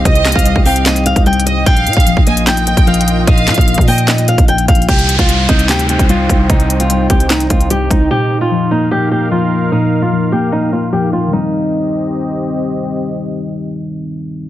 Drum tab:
HH |x--x--x-x-x-x-----o--x--x--x--x--x--x-x-x-x-----|x--x--x-x-x-x-----x--x--x--x--x--x--x-x-x-x-----|x--x--x-x-x-x-x-x-o--x--x--x--x--x--x--x--x-x-x-|x--x--x--x--x-----x--x--x--x--x--x--x-----x-----|
CP |------x-----------------x-----------------------|------------------------x-----------------------|------x-----------------x-----------------------|------------------------x-----------------------|
SD |------o-----------------o-----------------------|------------------------o-----------------------|------o-----------------o-----------------------|------------------------o-----------------------|
BD |o--------o-----o-----------------o--------------|o--------o-----o-----------------o--------------|o--------o-----o-----------------o--------o-----|o--------o--------o--------------o--------o-----|

HH |x--x--x--x--x-----x--x--x--x--x--x--x-----x-----|------------------------------------------------|------------------------------------------------|------------------------------------------------|
CP |------------------------x-----------------------|------------------------------------------------|------------------------------------------------|------------------------------------------------|
SD |------------------------o-----------------------|------------------------------------------------|------------------------------------------------|------------------------------------------------|
BD |o-----------------o-----------o-----------o-----|------------------------------------------------|------------------------------------------------|------------------------------------------------|

HH |------------------------------------------------|
CP |------------------------------------------------|
SD |------------------------------------------------|
BD |------------------------------------------------|